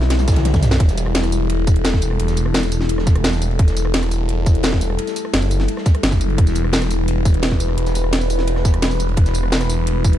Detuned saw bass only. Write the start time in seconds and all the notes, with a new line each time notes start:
Already playing: B1
0.80 E1
2.20 E1
3.59 E1
5.34 F#1
6.03 F#1
6.38 E1
7.78 E1
9.17 E1